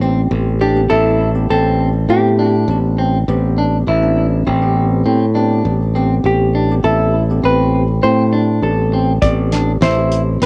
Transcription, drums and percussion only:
9.22 kick medium
9.22 closed hi-hat medium
9.52 snare soft
9.52 closed hi-hat medium
9.82 snare loud
9.82 closed hi-hat medium
10.12 closed hi-hat medium
10.42 snare soft
10.42 closed hi-hat medium

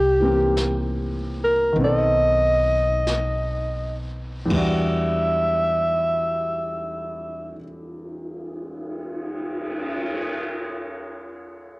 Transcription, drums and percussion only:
0.57 brush sweep soft
0.57 snare soft
0.57 hi-hat pedal soft
1.76 brush sweep soft
3.07 brush sweep soft
3.07 snare soft
3.07 hi-hat pedal soft
4.50 kick soft
4.50 crash soft
5.56 cymbal swell soft

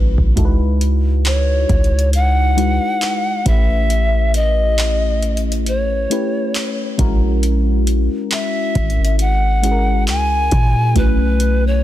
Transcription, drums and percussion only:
0.18 kick medium
0.37 kick loud
0.37 closed hi-hat medium
0.81 closed hi-hat medium
1.25 clap loud
1.25 closed hi-hat medium
1.69 kick medium
1.69 closed hi-hat soft
1.84 closed hi-hat soft
1.99 closed hi-hat medium
2.13 closed hi-hat medium
2.58 closed hi-hat medium
3.02 clap loud
3.02 closed hi-hat medium
3.46 kick loud
3.46 closed hi-hat medium
3.90 closed hi-hat medium
4.34 closed hi-hat medium
4.78 clap loud
4.78 closed hi-hat medium
5.22 closed hi-hat soft
5.37 closed hi-hat soft
5.52 closed hi-hat medium
5.66 closed hi-hat medium
6.11 closed hi-hat medium
6.55 clap loud
6.55 closed hi-hat medium
6.99 kick loud
6.99 closed hi-hat medium
7.43 closed hi-hat medium
7.87 closed hi-hat medium
8.31 clap loud
8.31 closed hi-hat medium
8.75 kick loud
8.75 closed hi-hat soft
8.90 closed hi-hat soft
9.05 closed hi-hat medium
9.19 closed hi-hat medium
9.64 closed hi-hat medium
10.08 clap loud
10.08 closed hi-hat medium
10.51 kick medium
10.51 closed hi-hat medium
10.96 kick loud
10.96 closed hi-hat medium
11.40 closed hi-hat medium

